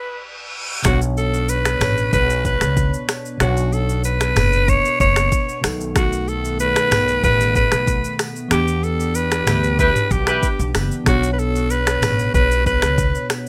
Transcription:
Already playing: alto saxophone B4, reverse cymbal
0.83 upright bass B1, tine electric piano B2 B3 D4, analog synth pad B3 D4 C#5, alto saxophone F#4, finger snap, kick, cross-stick, shaker
0.88 tine electric piano C#5
1.02 shaker
1.17 alto saxophone A4, shaker
1.34 shaker
1.49 alto saxophone B4, shaker
1.65 finger snap, cross-stick, shaker
1.81 upright bass A1, finger snap, cross-stick, mid tom, open hi-hat, shaker
1.98 shaker
2.13 upright bass B1, alto saxophone B4, kick, shaker
2.30 shaker
2.45 alto saxophone B4, kick, shaker
2.61 upright bass C#2, finger snap, cross-stick, shaker
2.77 kick, shaker
2.94 shaker
3.09 finger snap, cross-stick, open hi-hat, shaker
3.25 shaker
3.38 upright bass B1, tine electric piano B2 B3 D4, alto saxophone F#4, finger snap, cross-stick, shaker
3.43 tine electric piano C#5
3.57 shaker
3.73 alto saxophone A4, shaker
3.89 shaker
4.04 alto saxophone B4, shaker
4.21 finger snap, cross-stick, shaker
4.36 upright bass F#1, finger snap, cross-stick, mid tom, open hi-hat, shaker
4.53 shaker
4.68 alto saxophone C#5, kick, shaker
4.85 shaker
5.00 upright bass F#1, alto saxophone C#5, kick, shaker
5.16 finger snap, cross-stick, shaker
5.32 kick, shaker
5.49 shaker
5.61 upright bass B1, tine electric piano B2 B3 D#4, analog synth pad D#3 A3, finger snap, cross-stick, open hi-hat, shaker
5.66 tine electric piano A4
5.81 shaker
5.96 alto saxophone F#4, finger snap, kick, cross-stick, shaker
6.13 shaker
6.28 alto saxophone A4, shaker
6.45 shaker
6.60 alto saxophone B4, shaker
6.76 finger snap, cross-stick, shaker
6.91 upright bass B1, finger snap, cross-stick, mid tom, open hi-hat, shaker
7.08 shaker
7.24 upright bass A1, alto saxophone B4, kick, shaker
7.41 shaker
7.55 alto saxophone B4, kick, shaker
7.72 upright bass B1, finger snap, cross-stick, shaker
7.87 kick, shaker
8.04 shaker
8.19 finger snap, cross-stick, open hi-hat, shaker
8.36 shaker
8.49 upright bass E2, tine electric piano E3 B3 D4, analog synth pad E3 D4 G4, alto saxophone G4, finger snap, cross-stick, shaker
8.54 tine electric piano G4
8.68 shaker
8.83 alto saxophone A4, shaker
9.00 shaker
9.15 alto saxophone B4, shaker
9.31 finger snap, cross-stick, shaker
9.47 upright bass D2, horn section E4 G4 B4, finger snap, cross-stick, mid tom, open hi-hat, shaker
9.64 shaker
9.79 horn section E4 G4 B4, alto saxophone B4, kick, shaker
9.96 mid tom, shaker
10.11 upright bass B1, alto saxophone G4, kick, shaker
10.27 horn section E4 G4 B4, finger snap, cross-stick, shaker
10.43 kick, shaker
10.59 upright bass B1, shaker
10.75 upright bass F#1, finger snap, cross-stick, open hi-hat, shaker
10.91 shaker
11.04 upright bass B1, tine electric piano B2 B3 D4, analog synth pad B2 C#5, alto saxophone F#4, finger snap, kick, cross-stick, shaker
11.09 tine electric piano C#5
11.23 shaker
11.33 alto saxophone B4
11.39 alto saxophone A4, shaker
11.56 shaker
11.70 alto saxophone B4, shaker
11.87 finger snap, cross-stick, shaker
12.02 upright bass A1, finger snap, cross-stick, mid tom, open hi-hat, shaker
12.19 shaker
12.34 upright bass B1, alto saxophone B4, kick, shaker
12.51 shaker
12.66 alto saxophone B4, kick, shaker
12.82 upright bass C#2, finger snap, cross-stick, shaker
12.98 kick, shaker
13.15 shaker
13.30 finger snap, cross-stick, open hi-hat, shaker

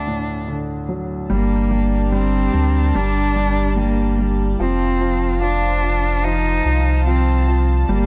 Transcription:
Already playing: grand piano D2, cello D4
0.07 grand piano A2
0.48 grand piano D3
0.89 grand piano F#3
1.30 sub bass G1, grand piano G3, cello A#3, french horn section D4, string section G4 A#4 D5 A5
1.71 grand piano G3
2.12 grand piano G3, cello C4
2.54 sub bass D2, grand piano G3
2.95 sub bass G1, grand piano G3, cello D4
3.36 grand piano G3
3.77 grand piano G3, cello A#3
4.18 grand piano G3
4.53 french horn section E4
4.59 sub bass F1, grand piano F3, cello C4, string section F4 C5 F5 A5, french horn section F4
5.01 grand piano F3
5.41 grand piano F3, cello D4
5.83 grand piano F3
6.24 grand piano F3, cello D#4
6.65 sub bass C2, grand piano F3
7.07 grand piano F3, cello C4
7.48 grand piano F3
7.88 sub bass G1, grand piano G3, cello A#3, french horn section G4, string section G4 A#4 D5

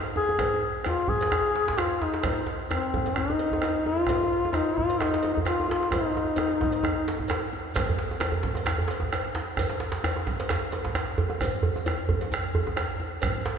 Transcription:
0.05 djembe slap
0.16 duduk G#4, bombo rim, djembe slap, djembe tone
0.28 bombo rim, djembe slap, djembe tone
0.39 bombo rim, bombo low, cowbell, djembe slap, djembe bass
0.52 djembe tone
0.74 bombo rim
0.85 duduk F4, bombo rim, cowbell, djembe slap, djembe tone, djembe bass
1.08 duduk G#4, bombo low
1.20 bombo rim, cowbell, djembe slap
1.32 bombo rim, djembe slap, djembe tone, djembe bass
1.44 bombo rim, djembe slap
1.55 djembe slap
1.68 bombo low, djembe slap, djembe tone
1.78 duduk F4, bombo rim, cowbell, djembe slap, djembe bass
1.91 bombo rim
2.01 duduk D#4, djembe slap, djembe tone
2.14 bombo rim, djembe slap
2.23 bombo rim, bombo low, cowbell, djembe slap, djembe bass
2.38 djembe tone
2.47 djembe slap
2.59 bombo rim, djembe slap
2.71 duduk C4, bombo rim, cowbell, djembe slap, djembe tone, djembe bass
2.94 bombo low, djembe tone
3.06 bombo rim, cowbell, djembe slap, djembe tone
3.16 duduk D#4, bombo rim, djembe tone, djembe bass
3.29 bombo rim, djembe slap, djembe tone
3.39 cowbell
3.51 bombo low, djembe tone
3.62 bombo rim, cowbell, djembe slap, djembe tone, djembe bass
3.74 bombo rim
3.86 duduk F4, djembe tone
3.97 bombo rim
4.07 bombo rim, bombo low, cowbell, djembe tone, djembe bass
4.21 djembe tone
4.23 djembe tone
4.43 bombo rim, djembe slap, djembe tone
4.53 duduk D#4, bombo rim, cowbell, djembe slap, djembe tone, djembe bass
4.77 duduk F4, bombo low
4.89 bombo rim, cowbell, djembe slap
5.00 duduk D#4, bombo rim, djembe slap, djembe tone, djembe bass
5.13 bombo rim, djembe slap
5.23 cowbell, djembe tone
5.34 duduk D#4, bombo low, djembe tone, djembe bass
5.45 duduk F4, bombo rim, cowbell, djembe slap, djembe bass
5.47 djembe slap
5.60 bombo rim, djembe tone
5.68 duduk F4, djembe slap, djembe tone
5.82 bombo rim, djembe slap
5.91 duduk D#4, bombo rim, bombo low, cowbell, djembe slap, djembe tone, djembe bass
6.03 djembe tone
6.17 djembe tone
6.27 djembe slap
6.36 bombo rim, cowbell, djembe slap, djembe tone, djembe bass
6.39 djembe tone
6.61 bombo rim, bombo low, djembe tone
6.72 bombo rim, cowbell, djembe slap
6.83 bombo rim, djembe tone, djembe bass
6.97 bombo rim
7.08 djembe slap
7.19 bombo low, djembe slap, djembe tone
7.28 bombo rim, cowbell, djembe slap, djembe bass
7.53 djembe slap, djembe tone
7.66 bombo rim
7.74 bombo rim, bombo low, cowbell, djembe slap, djembe bass, shekere
7.88 djembe tone, djembe bass
7.98 djembe slap
8.10 bombo rim, djembe slap, djembe tone, shekere
8.20 bombo rim, cowbell, djembe slap, djembe tone, djembe bass
8.32 djembe bass
8.43 bombo low, djembe slap
8.55 bombo rim, cowbell, djembe slap, djembe tone
8.66 bombo rim, djembe slap, djembe tone, djembe bass, shekere
8.78 bombo rim, djembe slap, djembe bass
8.88 cowbell, djembe slap
9.00 bombo low, djembe tone
9.02 djembe tone
9.13 bombo rim, cowbell, djembe slap, djembe bass, shekere
9.25 bombo rim
9.35 djembe slap, djembe tone
9.47 bombo rim
9.57 bombo rim, bombo low, cowbell, djembe tone, djembe bass, shekere
9.69 djembe slap, djembe tone
9.80 djembe slap
9.92 bombo rim, djembe slap, shekere
9.95 djembe slap
10.04 bombo rim, cowbell, djembe slap, djembe tone, djembe bass
10.16 djembe tone
10.27 bombo low, djembe slap
10.39 bombo rim, cowbell, djembe slap
10.49 bombo rim, djembe slap, djembe tone, djembe bass, shekere
10.62 bombo rim, djembe slap
10.72 cowbell, djembe tone
10.85 bombo low, djembe slap, djembe tone
10.95 bombo rim, cowbell, djembe slap, djembe bass, shekere
11.08 bombo rim
11.18 djembe tone, djembe bass
11.30 bombo rim, djembe tone
11.41 bombo rim, bombo low, cowbell, djembe bass, shekere
11.54 djembe tone
11.63 djembe bass
11.76 bombo rim, djembe slap, djembe tone, shekere
11.86 bombo rim, cowbell, djembe slap, djembe tone, djembe bass
12.09 bombo low, djembe bass
12.21 bombo rim, cowbell, djembe slap, djembe tone
12.32 bombo rim, djembe tone, djembe bass, shekere
12.44 bombo rim, djembe slap
12.55 djembe bass
12.66 bombo low, djembe tone
12.77 bombo rim, cowbell, djembe slap, djembe bass, shekere
12.90 bombo rim
13.00 djembe tone
13.14 bombo rim
13.22 bombo rim, bombo low, cowbell, djembe slap, djembe bass, shekere
13.35 djembe slap, djembe tone
13.45 djembe slap, shekere

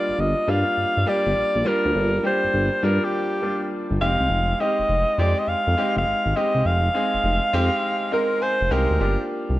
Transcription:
Already playing: grand piano G3 A#3 D4 F4, alto saxophone D5
0.09 analog synth bass G1
0.18 analog synth bass G1, alto saxophone D#5
0.47 analog synth bass G2, grand piano G3 A#3 D4 F4, alto saxophone F5
0.78 analog synth bass G2
0.97 analog synth bass G2
1.06 grand piano G3 A#3 D4 G4, alto saxophone D5
1.26 analog synth bass G1
1.36 analog synth bass A#1
1.55 analog synth bass A#1
1.65 grand piano G3 A#3 D4 F4, alto saxophone A#4
1.85 analog synth bass D2
1.95 analog synth bass G1
2.23 grand piano G3 A#3 D4 G4, alto saxophone C5
2.44 analog synth bass G1
2.54 analog synth bass G1
2.83 analog synth bass G2, grand piano G3 A#3 D4 F4, alto saxophone A#4
3.04 alto saxophone G4
3.42 grand piano G3 A#3 D4 F4
3.90 analog synth bass G1
4.01 analog synth bass F1, grand piano G#3 C4 D#4 G4, alto saxophone F5
4.20 analog synth bass C2
4.30 analog synth bass F1
4.60 grand piano G#3 C4 D#4 G4, alto saxophone D#5
4.79 analog synth bass F1
4.89 analog synth bass F1
5.18 analog synth bass F2, grand piano G#3 C4 D#4 G4, alto saxophone D5
5.39 alto saxophone D#5
5.48 analog synth bass F2, alto saxophone F5
5.67 analog synth bass F2
5.77 grand piano G#3 C4 D#4 G4
5.96 analog synth bass F1, alto saxophone F5
6.06 analog synth bass G#1
6.26 analog synth bass G#1
6.36 grand piano G#3 C4 D#4 G4, alto saxophone D#5
6.55 analog synth bass C2
6.65 analog synth bass F1, alto saxophone F5
6.94 grand piano G#3 C4 D#4 G#4
7.14 analog synth bass F1
7.24 analog synth bass F1
7.53 analog synth bass F2, grand piano G#3 C4 D#4 G4
8.12 grand piano G#3 C4 D#4 A#4, alto saxophone A#4
8.42 alto saxophone C5, grand piano G#5
8.61 analog synth bass F1
8.70 analog synth bass C2, grand piano G#3 C4 D#4 G4 F5, alto saxophone A#4
8.90 analog synth bass D2
9.00 analog synth bass G1, grand piano A#3 D4 F4 G4
9.49 analog synth bass C2

